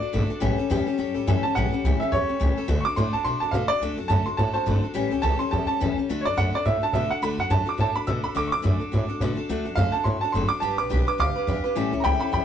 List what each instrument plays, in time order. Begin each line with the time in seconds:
Already playing: upright piano D5
0.01 steel-string acoustic guitar D4 F#4 A4, muted upright bass stroke
0.13 upright bass G#1, steel-string acoustic guitar D3 A3 D4 F#4 A4
0.30 steel-string acoustic guitar D4 F#4 A4, muted upright bass stroke
0.40 upright bass A1, steel-string acoustic guitar A2 E3 G3 C#4 G4 A4
0.58 steel-string acoustic guitar G3 C#4 G4 A4
0.70 upright bass E2, steel-string acoustic guitar A2 E3 G3 C#4 G4 A4
0.86 steel-string acoustic guitar G3 C#4 G4 A4, muted upright bass stroke
0.98 upright bass F#2, steel-string acoustic guitar G3 C#4 G4 A4
1.14 upright bass A2, steel-string acoustic guitar G3 C#4 G4 A4
1.27 upright bass F#2, steel-string acoustic guitar A2 E3 G3 C#4 G4 A4
1.43 steel-string acoustic guitar G3 C#4 G4 A4, upright piano A5, muted upright bass stroke
1.55 upright bass A1, steel-string acoustic guitar A2 E3 G3 C#4 G4 A4, upright piano F#5
1.72 steel-string acoustic guitar G3 C#4 G4 A4, muted upright bass stroke
1.84 upright bass C#2, steel-string acoustic guitar A2 E3 G3 C#4 G4 A4
2.00 steel-string acoustic guitar G3 C#4 G4 A4, upright piano E5
2.12 upright bass E2, steel-string acoustic guitar G3 C#4 G4 A4, upright piano C#5
2.28 steel-string acoustic guitar G3 C#4 G4 A4, muted upright bass stroke
2.40 upright bass C#2, steel-string acoustic guitar A2 E3 G3 C#4 G4 A4
2.56 steel-string acoustic guitar G3 C#4 G4 A4, muted upright bass stroke
2.68 upright bass D2, steel-string acoustic guitar D3 A3 D4 F#4 A4
2.80 upright piano C#6
2.85 steel-string acoustic guitar D4 F#4 A4, upright piano D6, muted upright bass stroke
2.96 upright bass A2, steel-string acoustic guitar D3 A3 D4 F#4 A4, upright piano C6
3.13 steel-string acoustic guitar D4 F#4 A4, upright piano A5, muted upright bass stroke
3.24 upright bass B2, steel-string acoustic guitar A3 D4 F#4 A4, upright piano C6
3.40 upright bass D3, steel-string acoustic guitar F#4 A4, upright piano A5
3.44 steel-string acoustic guitar D4
3.51 upright bass B2, steel-string acoustic guitar D3 A3 D4 F#4 A4, upright piano F5
3.68 steel-string acoustic guitar D4 F#4 A4, upright piano D5, muted upright bass stroke
3.81 upright bass D2, steel-string acoustic guitar D3 A3 D4 F#4 A4
3.97 upright bass F#2, steel-string acoustic guitar D4 F#4 A4
4.08 upright bass F#2, steel-string acoustic guitar D3 A3 D4 F#4 A4, upright piano A5
4.26 steel-string acoustic guitar D4 F#4 A4, upright piano C6, muted upright bass stroke
4.37 upright bass A2, steel-string acoustic guitar A3 D4 F#4 A4, upright piano A5
4.53 steel-string acoustic guitar D4 F#4 A4, upright piano C5 A5, muted upright bass stroke
4.66 upright bass G1, steel-string acoustic guitar D3 A3 D4 F#4 A4
4.82 steel-string acoustic guitar D4 F#4 A4, muted upright bass stroke
4.94 upright bass A1, steel-string acoustic guitar A2 E3 G3 C#4 G4 A4
5.11 upright bass C#2, steel-string acoustic guitar G3 C#4 G4 A4
5.22 upright bass C#2, steel-string acoustic guitar A2 E3 G3 C#4 G4 A4, upright piano A5
5.39 steel-string acoustic guitar G3 C#4 G4 A4, upright piano C6
5.51 upright bass E2, steel-string acoustic guitar G3 C#4 G4 A4, upright piano A5
5.67 steel-string acoustic guitar G3 C#4 G4 A4, upright piano A5
5.80 upright bass E2, steel-string acoustic guitar A2 E3 G3 C#4 G4 A4
5.97 steel-string acoustic guitar G3 C#4 G4 A4, muted upright bass stroke
6.09 upright bass D2, steel-string acoustic guitar D3 A3 D4 F#4 A4
6.21 upright piano C#5
6.25 upright bass F#2, steel-string acoustic guitar D4 F#4 A4, upright piano D5
6.37 upright bass F#2, steel-string acoustic guitar D3 A3 D4 F#4 A4, upright piano F#5
6.54 steel-string acoustic guitar D4 F#4 A4, upright piano D5, muted upright bass stroke
6.65 upright bass A2, steel-string acoustic guitar A3 D4 F#4 A4, upright piano E5
6.82 steel-string acoustic guitar D4 F#4 A4, upright piano A5, muted upright bass stroke
6.93 upright bass B2, steel-string acoustic guitar D3 A3 D4 F#4 A4, upright piano E5
7.10 steel-string acoustic guitar D4 F#4 A4, upright piano F#5, muted upright bass stroke
7.22 upright bass D2, steel-string acoustic guitar D3 A3 D4 F#4 A4, upright piano B5
7.37 upright bass F#2, steel-string acoustic guitar D4 F#4 A4, upright piano F#5
7.50 upright bass F#2, steel-string acoustic guitar D3 A3 D4 F#4 A4, upright piano A5
7.66 steel-string acoustic guitar D4 F#4 A4, upright piano D6
7.78 upright bass A2, steel-string acoustic guitar A3 D4 F#4 A4, upright piano A5
7.94 steel-string acoustic guitar D4 F#4 A4, upright piano B5, muted upright bass stroke
8.07 upright bass B2, steel-string acoustic guitar D3 A3 D4 F#4 A4, upright piano E6
8.24 steel-string acoustic guitar D4 F#4 A4, upright piano B5, muted upright bass stroke
8.35 upright bass D2, steel-string acoustic guitar D3 A3 D4 F#4 A4, upright piano D6
8.47 upright piano C#6
8.52 upright bass F#2, steel-string acoustic guitar D4 F#4 A4, upright piano D6
8.62 upright bass F#2, steel-string acoustic guitar D3 A3 D4 F#4 A4
8.80 steel-string acoustic guitar D4 F#4 A4, muted upright bass stroke
8.92 upright bass A2, steel-string acoustic guitar A3 D4 F#4 A4
9.08 steel-string acoustic guitar D4 F#4 A4, muted upright bass stroke
9.20 upright bass B2, steel-string acoustic guitar D3 A3 D4 F#4 A4
9.37 steel-string acoustic guitar D4 F#4 A4, muted upright bass stroke
9.49 upright bass D2, steel-string acoustic guitar D3 A3 D4 F#4 A4
9.65 upright bass F#2, steel-string acoustic guitar D4 F#4 A4
9.76 upright bass F#2, steel-string acoustic guitar D3 A3 D4 F#4 A4, upright piano F5
9.92 steel-string acoustic guitar D4 F#4 A4, upright piano A5, muted upright bass stroke
10.04 upright bass A2, steel-string acoustic guitar A3 D4 F#4 A4, upright piano C6
10.21 steel-string acoustic guitar D4 F#4 A4, upright piano A5, muted upright bass stroke
10.32 upright bass F#1, steel-string acoustic guitar D3 A3 D4 F#4 A4, upright piano C6
10.49 steel-string acoustic guitar D4 F#4 A4, upright piano D6
10.60 upright bass G1, steel-string acoustic guitar G3 D4 G4 B4, upright piano A5
10.78 upright bass B1, steel-string acoustic guitar D4 G4 B4, upright piano D6
10.90 upright bass B1, steel-string acoustic guitar G3 D4 G4 B4
11.06 steel-string acoustic guitar D4 G4 B4, upright piano D6
11.18 upright bass D2, steel-string acoustic guitar G3 D4 G4 B4, upright piano F5 D6
11.36 steel-string acoustic guitar D4 G4 B4
11.47 upright bass E2, steel-string acoustic guitar G3 D4 G4 B4
11.64 steel-string acoustic guitar D4 G4 B4, muted upright bass stroke
11.75 upright bass A1, steel-string acoustic guitar A2 E3 G3 C#4 E4 A4
11.92 upright bass C#2, steel-string acoustic guitar G3 C#4 E4 A4
12.00 steel-string acoustic guitar A2 E3, upright piano G5 A#5
12.04 upright bass C#2, steel-string acoustic guitar G3 C#4 E4 A4, upright piano B5
12.20 steel-string acoustic guitar G3 C#4 E4 A4, upright piano G5 B5
12.32 upright bass E2, steel-string acoustic guitar G3 C#4 E4 A4, upright piano G5 B5